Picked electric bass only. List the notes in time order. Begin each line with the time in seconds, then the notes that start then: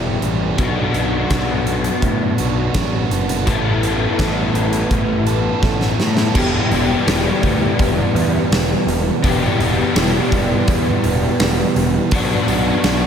Already playing: E1
0.23 A1
0.58 B1
0.94 B1
1.30 B1
2.02 A2
2.39 B1
2.75 A1
3.11 F#1
3.47 A1
4.19 A1
4.54 A1
4.91 A1
5.63 A1
5.99 A2
6.35 E1
6.71 E1
7.07 E1
7.43 D2
7.79 E1
8.15 E2
8.51 E1
8.87 E1
9.23 E1
9.59 E1
9.95 E1
10.32 E1
10.68 E2
11.04 E1
11.40 E1
11.76 E1
12.12 B1
12.48 B1
12.84 B1